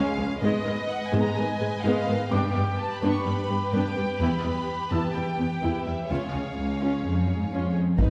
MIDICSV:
0, 0, Header, 1, 9, 480
1, 0, Start_track
1, 0, Tempo, 472441
1, 432, Time_signature, 4, 2, 24, 8
1, 8230, End_track
2, 0, Start_track
2, 0, Title_t, "Felt piano"
2, 0, Program_c, 0, 0
2, 0, Control_c, 0, 64, 127
2, 0, Note_on_c, 0, 83, 39
2, 153, Note_off_c, 0, 83, 0
2, 451, Control_c, 0, 64, 0
2, 634, Control_c, 0, 64, 127
2, 2351, Note_on_c, 0, 86, 51
2, 2372, Control_c, 0, 64, 0
2, 2525, Control_c, 0, 64, 127
2, 3751, Note_off_c, 0, 86, 0
2, 4293, Control_c, 0, 64, 0
2, 4431, Control_c, 0, 64, 127
2, 4999, Note_on_c, 0, 88, 34
2, 6211, Control_c, 0, 64, 0
2, 6361, Control_c, 0, 64, 127
2, 6395, Note_off_c, 0, 88, 0
2, 8132, Control_c, 0, 64, 0
2, 8230, End_track
3, 0, Start_track
3, 0, Title_t, "Violin section"
3, 0, Program_c, 1, 48
3, 0, Note_on_c, 1, 80, 81
3, 190, Note_off_c, 1, 80, 0
3, 434, Note_on_c, 1, 75, 73
3, 879, Note_off_c, 1, 75, 0
3, 904, Note_on_c, 1, 78, 80
3, 1068, Note_off_c, 1, 78, 0
3, 1076, Note_on_c, 1, 80, 71
3, 1225, Note_on_c, 1, 82, 82
3, 1234, Note_off_c, 1, 80, 0
3, 1380, Note_on_c, 1, 80, 82
3, 1388, Note_off_c, 1, 82, 0
3, 1858, Note_on_c, 1, 77, 82
3, 1866, Note_off_c, 1, 80, 0
3, 2345, Note_off_c, 1, 77, 0
3, 2356, Note_on_c, 1, 79, 69
3, 2823, Note_on_c, 1, 81, 83
3, 2834, Note_off_c, 1, 79, 0
3, 2981, Note_on_c, 1, 83, 74
3, 2987, Note_off_c, 1, 81, 0
3, 3143, Note_on_c, 1, 85, 75
3, 3146, Note_off_c, 1, 83, 0
3, 3285, Note_on_c, 1, 83, 72
3, 3304, Note_off_c, 1, 85, 0
3, 3769, Note_off_c, 1, 83, 0
3, 3773, Note_on_c, 1, 79, 77
3, 4252, Note_off_c, 1, 79, 0
3, 4254, Note_on_c, 1, 83, 72
3, 4983, Note_off_c, 1, 83, 0
3, 4986, Note_on_c, 1, 81, 67
3, 5214, Note_on_c, 1, 79, 62
3, 5229, Note_off_c, 1, 81, 0
3, 5941, Note_on_c, 1, 76, 49
3, 5943, Note_off_c, 1, 79, 0
3, 6181, Note_off_c, 1, 76, 0
3, 6192, Note_on_c, 1, 77, 49
3, 7632, Note_off_c, 1, 77, 0
3, 8115, Note_on_c, 1, 83, 46
3, 8230, Note_off_c, 1, 83, 0
3, 8230, End_track
4, 0, Start_track
4, 0, Title_t, "Violin section"
4, 0, Program_c, 2, 48
4, 0, Note_on_c, 2, 68, 52
4, 0, Note_on_c, 2, 77, 54
4, 394, Note_off_c, 2, 68, 0
4, 394, Note_off_c, 2, 77, 0
4, 422, Note_on_c, 2, 75, 55
4, 423, Note_on_c, 2, 71, 56
4, 2309, Note_off_c, 2, 71, 0
4, 2309, Note_off_c, 2, 75, 0
4, 2351, Note_on_c, 2, 71, 53
4, 2352, Note_on_c, 2, 67, 54
4, 6151, Note_off_c, 2, 67, 0
4, 6191, Note_on_c, 2, 73, 33
4, 6192, Note_off_c, 2, 71, 0
4, 6194, Note_on_c, 2, 68, 35
4, 7874, Note_off_c, 2, 73, 0
4, 7876, Note_off_c, 2, 68, 0
4, 8113, Note_on_c, 2, 71, 45
4, 8230, Note_off_c, 2, 71, 0
4, 8230, End_track
5, 0, Start_track
5, 0, Title_t, "Viola section"
5, 0, Program_c, 3, 48
5, 0, Note_on_c, 3, 56, 66
5, 0, Note_on_c, 3, 61, 70
5, 172, Note_off_c, 3, 56, 0
5, 174, Note_off_c, 3, 61, 0
5, 193, Note_on_c, 3, 53, 46
5, 195, Note_on_c, 3, 56, 45
5, 275, Note_off_c, 3, 53, 0
5, 276, Note_off_c, 3, 56, 0
5, 426, Note_on_c, 3, 59, 73
5, 431, Note_on_c, 3, 56, 65
5, 652, Note_off_c, 3, 59, 0
5, 654, Note_off_c, 3, 56, 0
5, 669, Note_on_c, 3, 51, 48
5, 670, Note_on_c, 3, 56, 49
5, 750, Note_off_c, 3, 51, 0
5, 752, Note_off_c, 3, 56, 0
5, 1151, Note_on_c, 3, 59, 74
5, 1152, Note_on_c, 3, 56, 78
5, 1374, Note_off_c, 3, 59, 0
5, 1375, Note_off_c, 3, 56, 0
5, 1392, Note_on_c, 3, 51, 49
5, 1393, Note_on_c, 3, 56, 46
5, 1474, Note_off_c, 3, 51, 0
5, 1474, Note_off_c, 3, 56, 0
5, 1629, Note_on_c, 3, 56, 55
5, 1631, Note_off_c, 3, 56, 0
5, 1631, Note_on_c, 3, 56, 53
5, 1712, Note_off_c, 3, 56, 0
5, 1878, Note_on_c, 3, 59, 72
5, 1880, Note_on_c, 3, 56, 69
5, 2096, Note_off_c, 3, 56, 0
5, 2098, Note_off_c, 3, 59, 0
5, 2108, Note_on_c, 3, 56, 50
5, 2113, Note_on_c, 3, 51, 48
5, 2189, Note_off_c, 3, 56, 0
5, 2194, Note_off_c, 3, 51, 0
5, 2350, Note_on_c, 3, 62, 65
5, 2354, Note_on_c, 3, 59, 61
5, 2574, Note_off_c, 3, 62, 0
5, 2576, Note_off_c, 3, 59, 0
5, 2594, Note_on_c, 3, 55, 40
5, 2594, Note_on_c, 3, 59, 47
5, 2675, Note_off_c, 3, 55, 0
5, 2675, Note_off_c, 3, 59, 0
5, 3071, Note_on_c, 3, 62, 71
5, 3073, Note_on_c, 3, 59, 73
5, 3294, Note_off_c, 3, 62, 0
5, 3296, Note_off_c, 3, 59, 0
5, 3307, Note_on_c, 3, 59, 44
5, 3308, Note_on_c, 3, 55, 50
5, 3388, Note_off_c, 3, 59, 0
5, 3389, Note_off_c, 3, 55, 0
5, 3543, Note_on_c, 3, 59, 44
5, 3544, Note_off_c, 3, 59, 0
5, 3544, Note_on_c, 3, 59, 46
5, 3625, Note_off_c, 3, 59, 0
5, 3787, Note_on_c, 3, 59, 60
5, 3791, Note_on_c, 3, 62, 56
5, 4012, Note_off_c, 3, 59, 0
5, 4015, Note_off_c, 3, 62, 0
5, 4029, Note_on_c, 3, 55, 39
5, 4029, Note_on_c, 3, 59, 37
5, 4110, Note_off_c, 3, 55, 0
5, 4110, Note_off_c, 3, 59, 0
5, 4265, Note_on_c, 3, 59, 55
5, 4266, Note_on_c, 3, 64, 59
5, 4491, Note_off_c, 3, 59, 0
5, 4492, Note_off_c, 3, 64, 0
5, 4511, Note_on_c, 3, 55, 40
5, 4511, Note_on_c, 3, 59, 38
5, 4592, Note_off_c, 3, 55, 0
5, 4592, Note_off_c, 3, 59, 0
5, 4994, Note_on_c, 3, 59, 53
5, 4996, Note_on_c, 3, 64, 50
5, 5216, Note_off_c, 3, 59, 0
5, 5217, Note_off_c, 3, 64, 0
5, 5236, Note_on_c, 3, 59, 39
5, 5238, Note_on_c, 3, 55, 38
5, 5317, Note_off_c, 3, 59, 0
5, 5319, Note_off_c, 3, 55, 0
5, 5478, Note_on_c, 3, 59, 39
5, 5479, Note_off_c, 3, 59, 0
5, 5479, Note_on_c, 3, 59, 36
5, 5560, Note_off_c, 3, 59, 0
5, 5710, Note_on_c, 3, 59, 46
5, 5710, Note_on_c, 3, 64, 53
5, 5934, Note_off_c, 3, 59, 0
5, 5934, Note_off_c, 3, 64, 0
5, 5955, Note_on_c, 3, 59, 31
5, 5957, Note_on_c, 3, 55, 34
5, 6036, Note_off_c, 3, 59, 0
5, 6038, Note_off_c, 3, 55, 0
5, 6197, Note_on_c, 3, 61, 40
5, 6200, Note_on_c, 3, 65, 41
5, 6418, Note_off_c, 3, 61, 0
5, 6419, Note_off_c, 3, 65, 0
5, 6438, Note_on_c, 3, 56, 28
5, 6438, Note_on_c, 3, 61, 26
5, 6519, Note_off_c, 3, 56, 0
5, 6520, Note_off_c, 3, 61, 0
5, 6917, Note_on_c, 3, 61, 47
5, 6917, Note_on_c, 3, 65, 40
5, 7138, Note_off_c, 3, 61, 0
5, 7138, Note_off_c, 3, 65, 0
5, 7159, Note_on_c, 3, 56, 29
5, 7160, Note_on_c, 3, 61, 30
5, 7240, Note_off_c, 3, 56, 0
5, 7241, Note_off_c, 3, 61, 0
5, 7397, Note_on_c, 3, 61, 27
5, 7399, Note_off_c, 3, 61, 0
5, 7399, Note_on_c, 3, 61, 31
5, 7481, Note_off_c, 3, 61, 0
5, 7634, Note_on_c, 3, 65, 41
5, 7635, Note_on_c, 3, 61, 39
5, 7856, Note_off_c, 3, 61, 0
5, 7856, Note_off_c, 3, 65, 0
5, 7869, Note_on_c, 3, 56, 28
5, 7869, Note_on_c, 3, 61, 30
5, 7950, Note_off_c, 3, 61, 0
5, 7951, Note_off_c, 3, 56, 0
5, 8108, Note_on_c, 3, 59, 57
5, 8230, Note_off_c, 3, 59, 0
5, 8230, End_track
6, 0, Start_track
6, 0, Title_t, "Cello section"
6, 0, Program_c, 4, 48
6, 187, Note_on_c, 4, 37, 48
6, 268, Note_off_c, 4, 37, 0
6, 426, Note_on_c, 4, 44, 70
6, 507, Note_off_c, 4, 44, 0
6, 665, Note_on_c, 4, 44, 50
6, 746, Note_off_c, 4, 44, 0
6, 1148, Note_on_c, 4, 44, 74
6, 1229, Note_off_c, 4, 44, 0
6, 1391, Note_on_c, 4, 44, 50
6, 1472, Note_off_c, 4, 44, 0
6, 1628, Note_on_c, 4, 44, 43
6, 1709, Note_off_c, 4, 44, 0
6, 1868, Note_on_c, 4, 44, 63
6, 1949, Note_off_c, 4, 44, 0
6, 2108, Note_on_c, 4, 44, 46
6, 2190, Note_off_c, 4, 44, 0
6, 2351, Note_on_c, 4, 43, 69
6, 2432, Note_off_c, 4, 43, 0
6, 2595, Note_on_c, 4, 43, 45
6, 2676, Note_off_c, 4, 43, 0
6, 3069, Note_on_c, 4, 43, 63
6, 3151, Note_off_c, 4, 43, 0
6, 3305, Note_on_c, 4, 43, 45
6, 3386, Note_off_c, 4, 43, 0
6, 3549, Note_on_c, 4, 43, 43
6, 3630, Note_off_c, 4, 43, 0
6, 3789, Note_on_c, 4, 43, 61
6, 3871, Note_off_c, 4, 43, 0
6, 4025, Note_on_c, 4, 43, 42
6, 4107, Note_off_c, 4, 43, 0
6, 4271, Note_on_c, 4, 40, 58
6, 4352, Note_off_c, 4, 40, 0
6, 4516, Note_on_c, 4, 40, 39
6, 4598, Note_off_c, 4, 40, 0
6, 4987, Note_on_c, 4, 40, 53
6, 5068, Note_off_c, 4, 40, 0
6, 5226, Note_on_c, 4, 40, 36
6, 5308, Note_off_c, 4, 40, 0
6, 5472, Note_on_c, 4, 40, 36
6, 5554, Note_off_c, 4, 40, 0
6, 5718, Note_on_c, 4, 40, 41
6, 5799, Note_off_c, 4, 40, 0
6, 5953, Note_on_c, 4, 40, 32
6, 6035, Note_off_c, 4, 40, 0
6, 6198, Note_on_c, 4, 37, 44
6, 6279, Note_off_c, 4, 37, 0
6, 6438, Note_on_c, 4, 37, 32
6, 6519, Note_off_c, 4, 37, 0
6, 6673, Note_on_c, 4, 37, 40
6, 7119, Note_off_c, 4, 37, 0
6, 7158, Note_on_c, 4, 41, 45
6, 7312, Note_off_c, 4, 41, 0
6, 7325, Note_on_c, 4, 42, 40
6, 7478, Note_off_c, 4, 42, 0
6, 7481, Note_on_c, 4, 44, 37
6, 7633, Note_off_c, 4, 44, 0
6, 7639, Note_on_c, 4, 41, 34
6, 8106, Note_off_c, 4, 41, 0
6, 8117, Note_on_c, 4, 63, 58
6, 8230, Note_off_c, 4, 63, 0
6, 8230, End_track
7, 0, Start_track
7, 0, Title_t, "Detuned saw bass"
7, 0, Program_c, 5, 39
7, 8107, Note_on_c, 5, 32, 59
7, 8230, Note_off_c, 5, 32, 0
7, 8230, End_track
8, 0, Start_track
8, 0, Title_t, "Double bass section"
8, 0, Program_c, 6, 48
8, 8121, Note_on_c, 6, 32, 49
8, 8202, Note_off_c, 6, 32, 0
8, 8230, End_track
9, 0, Start_track
9, 0, Title_t, "Taiko and cinematic ensemble drums"
9, 8113, Note_on_c, 9, 41, 80
9, 8215, Note_off_c, 9, 41, 0
9, 8230, End_track
0, 0, End_of_file